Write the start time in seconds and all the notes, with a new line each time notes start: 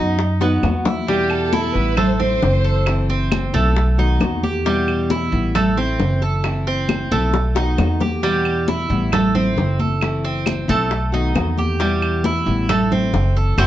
Already playing: F#2 F#3 B3 D#4 F#4 D#5
0.18 muted nylon-string guitar stroke, high bongo, high conga
0.40 F#3 B3 D#4 F#4, high bongo
0.63 E2 F#3 B3 D#4 F#4, low bongo, high conga, claves
0.85 E4, low bongo, high conga
1.07 B2 E3 G3 B3 E4 G4, high bongo, high conga
1.30 A4, high bongo, high conga, claves
1.53 E4, high bongo, high conga
1.75 A1 E3 G3 B3 E4 B4, high conga
1.97 A3 C5, muted nylon-string guitar stroke, high bongo, high conga, low conga, claves
2.18 A3 C4 E4 C5, high bongo, high conga, low conga
2.42 F#1 E3 A3 C4 E4, high bongo, low bongo
2.64 A4, high bongo
2.86 E3 A3 C4 E4, high bongo, high conga, claves
3.09 C4, high bongo, high conga
3.32 high bongo, high conga, claves
3.53 B1 A3 C4 E4, high conga
3.76 muted nylon-string guitar stroke, high bongo, high conga
3.98 D#3 A3 B3 D#4 F#4, high bongo, high conga
4.20 E2 D#3 A3 B3 F#4, high bongo, low bongo, high conga, claves
4.43 G4, high bongo, high conga
4.65 B2 E3 G3 B3 E4, high bongo, high conga
4.88 high bongo, high conga, claves
5.10 E4, high bongo, high conga
5.32 A1 E3 G3 B3 E4, high conga
5.55 A3, muted nylon-string guitar stroke, high bongo, high conga, low conga, claves
5.77 A3 C4 E4, high bongo
5.99 F#1 E3 A3 C4 E4, high bongo, low bongo, high conga
6.22 A4, high bongo
6.44 E3 A3 C4 E4, high bongo, high conga, claves
6.67 C4, high bongo, high conga
6.89 high bongo, high conga, claves
7.11 B1 A3 C4 E4, high conga
7.34 muted nylon-string guitar stroke, high bongo, high conga
7.55 D#3 A3 B3 D#4 F#4, high bongo, high conga
7.78 E2 D#3 A3 B3 F#4, low bongo, high conga, claves
8.01 G4, low bongo, high conga
8.23 B2 E3 G3 B3 E4, high bongo
8.45 high bongo, high conga, claves
8.68 E4, high bongo, high conga
8.90 A1 E3 G3 B3 E4, high conga
9.12 A3, high bongo, high conga, low conga, claves
9.35 A3 C4 E4, high bongo, high conga, low conga
9.57 F#1 E3 A3 C4 E4, high bongo, low bongo, high conga
9.79 A4, high bongo, high conga
10.01 E3 A3 C4 E4, high bongo, high conga, claves
10.24 C4, high bongo, high conga
10.46 high bongo, high conga, claves
10.68 B1 A3 C4 E4, high conga
10.91 muted nylon-string guitar stroke, high bongo, high conga
11.12 D#3 A3 B3 D#4 F#4, high bongo, high conga
11.35 E2 D#3 A3 B3 F#4, high bongo, low bongo, high conga, claves
11.58 G4, high bongo, high conga
11.79 B2 E3 G3 B3 E4, high bongo, high conga
12.02 high bongo, high conga, claves
12.24 E4, high bongo, high conga
12.46 A1 E3 G3 B3 E4, high conga
12.69 A3, high bongo, high conga, low conga, claves
12.91 A3 C4 E4, high bongo, high conga, low conga
13.13 F#1 E3 A3 C4 E4, high bongo, low bongo, high conga
13.36 A4, high bongo
13.58 F#1 F#3 A3 C4 E4 F#4, high bongo, high conga, claves